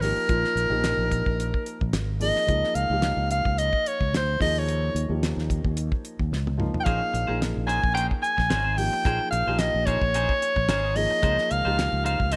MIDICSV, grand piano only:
0, 0, Header, 1, 2, 480
1, 0, Start_track
1, 0, Tempo, 546946
1, 256, Time_signature, 4, 2, 24, 8
1, 10849, End_track
2, 0, Start_track
2, 0, Title_t, "Grand piano"
2, 0, Program_c, 0, 0
2, 11, Note_on_c, 0, 53, 61
2, 12, Note_on_c, 0, 58, 51
2, 18, Note_on_c, 0, 63, 56
2, 23, Note_on_c, 0, 67, 66
2, 233, Note_off_c, 0, 53, 0
2, 240, Note_off_c, 0, 58, 0
2, 241, Note_off_c, 0, 63, 0
2, 246, Note_on_c, 0, 53, 64
2, 248, Note_off_c, 0, 67, 0
2, 254, Note_on_c, 0, 58, 54
2, 254, Note_on_c, 0, 63, 63
2, 257, Note_on_c, 0, 65, 73
2, 597, Note_off_c, 0, 53, 0
2, 599, Note_off_c, 0, 63, 0
2, 604, Note_off_c, 0, 58, 0
2, 606, Note_off_c, 0, 65, 0
2, 610, Note_on_c, 0, 53, 72
2, 612, Note_on_c, 0, 63, 76
2, 614, Note_on_c, 0, 67, 77
2, 618, Note_on_c, 0, 58, 74
2, 1525, Note_off_c, 0, 53, 0
2, 1526, Note_off_c, 0, 63, 0
2, 1526, Note_off_c, 0, 67, 0
2, 1528, Note_off_c, 0, 58, 0
2, 1930, Note_on_c, 0, 63, 53
2, 1931, Note_on_c, 0, 53, 58
2, 1931, Note_on_c, 0, 58, 54
2, 1940, Note_on_c, 0, 68, 71
2, 2148, Note_off_c, 0, 53, 0
2, 2152, Note_off_c, 0, 58, 0
2, 2155, Note_off_c, 0, 63, 0
2, 2159, Note_off_c, 0, 68, 0
2, 2161, Note_on_c, 0, 53, 64
2, 2165, Note_on_c, 0, 58, 54
2, 2168, Note_on_c, 0, 63, 57
2, 2172, Note_on_c, 0, 68, 73
2, 2519, Note_off_c, 0, 53, 0
2, 2521, Note_off_c, 0, 58, 0
2, 2522, Note_off_c, 0, 63, 0
2, 2524, Note_off_c, 0, 68, 0
2, 2550, Note_on_c, 0, 53, 62
2, 2551, Note_on_c, 0, 58, 61
2, 2551, Note_on_c, 0, 63, 58
2, 2560, Note_on_c, 0, 67, 77
2, 3455, Note_off_c, 0, 53, 0
2, 3456, Note_off_c, 0, 58, 0
2, 3456, Note_off_c, 0, 63, 0
2, 3460, Note_off_c, 0, 67, 0
2, 3856, Note_on_c, 0, 53, 64
2, 3863, Note_on_c, 0, 63, 61
2, 3865, Note_on_c, 0, 58, 63
2, 3867, Note_on_c, 0, 68, 75
2, 4434, Note_off_c, 0, 53, 0
2, 4437, Note_off_c, 0, 63, 0
2, 4438, Note_off_c, 0, 58, 0
2, 4439, Note_off_c, 0, 68, 0
2, 4463, Note_on_c, 0, 53, 63
2, 4471, Note_on_c, 0, 58, 59
2, 4474, Note_on_c, 0, 63, 57
2, 4475, Note_on_c, 0, 67, 65
2, 5371, Note_off_c, 0, 53, 0
2, 5375, Note_off_c, 0, 58, 0
2, 5377, Note_off_c, 0, 63, 0
2, 5378, Note_off_c, 0, 67, 0
2, 5771, Note_on_c, 0, 53, 74
2, 5772, Note_on_c, 0, 58, 64
2, 5777, Note_on_c, 0, 65, 80
2, 5779, Note_on_c, 0, 63, 62
2, 5998, Note_off_c, 0, 53, 0
2, 6003, Note_off_c, 0, 63, 0
2, 6004, Note_off_c, 0, 58, 0
2, 6007, Note_off_c, 0, 65, 0
2, 6011, Note_on_c, 0, 53, 62
2, 6016, Note_on_c, 0, 63, 57
2, 6017, Note_on_c, 0, 68, 69
2, 6018, Note_on_c, 0, 58, 53
2, 6364, Note_off_c, 0, 53, 0
2, 6367, Note_off_c, 0, 63, 0
2, 6367, Note_off_c, 0, 68, 0
2, 6368, Note_off_c, 0, 58, 0
2, 6384, Note_on_c, 0, 53, 61
2, 6387, Note_on_c, 0, 58, 62
2, 6387, Note_on_c, 0, 63, 62
2, 6387, Note_on_c, 0, 68, 70
2, 7291, Note_off_c, 0, 53, 0
2, 7293, Note_off_c, 0, 58, 0
2, 7293, Note_off_c, 0, 63, 0
2, 7293, Note_off_c, 0, 68, 0
2, 7700, Note_on_c, 0, 53, 61
2, 7700, Note_on_c, 0, 67, 66
2, 7703, Note_on_c, 0, 58, 52
2, 7706, Note_on_c, 0, 63, 56
2, 7923, Note_off_c, 0, 53, 0
2, 7927, Note_off_c, 0, 67, 0
2, 7929, Note_off_c, 0, 58, 0
2, 7929, Note_off_c, 0, 63, 0
2, 7936, Note_on_c, 0, 53, 61
2, 7942, Note_on_c, 0, 58, 56
2, 7942, Note_on_c, 0, 63, 58
2, 7944, Note_on_c, 0, 68, 69
2, 8286, Note_off_c, 0, 53, 0
2, 8288, Note_off_c, 0, 58, 0
2, 8289, Note_off_c, 0, 63, 0
2, 8290, Note_off_c, 0, 68, 0
2, 8306, Note_on_c, 0, 53, 65
2, 8308, Note_on_c, 0, 58, 58
2, 8310, Note_on_c, 0, 63, 60
2, 8312, Note_on_c, 0, 67, 70
2, 9210, Note_off_c, 0, 53, 0
2, 9211, Note_off_c, 0, 58, 0
2, 9212, Note_off_c, 0, 63, 0
2, 9213, Note_off_c, 0, 67, 0
2, 9611, Note_on_c, 0, 53, 64
2, 9614, Note_on_c, 0, 63, 56
2, 9616, Note_on_c, 0, 58, 62
2, 9620, Note_on_c, 0, 68, 71
2, 9830, Note_off_c, 0, 53, 0
2, 9831, Note_off_c, 0, 68, 0
2, 9832, Note_off_c, 0, 58, 0
2, 9834, Note_off_c, 0, 63, 0
2, 9843, Note_on_c, 0, 53, 66
2, 9844, Note_on_c, 0, 68, 72
2, 9846, Note_on_c, 0, 58, 62
2, 9847, Note_on_c, 0, 63, 56
2, 10197, Note_off_c, 0, 53, 0
2, 10197, Note_off_c, 0, 68, 0
2, 10198, Note_off_c, 0, 58, 0
2, 10199, Note_off_c, 0, 63, 0
2, 10215, Note_on_c, 0, 53, 66
2, 10217, Note_on_c, 0, 58, 58
2, 10223, Note_on_c, 0, 63, 58
2, 10228, Note_on_c, 0, 67, 77
2, 10849, Note_off_c, 0, 53, 0
2, 10849, Note_off_c, 0, 58, 0
2, 10849, Note_off_c, 0, 63, 0
2, 10849, Note_off_c, 0, 67, 0
2, 10849, End_track
0, 0, End_of_file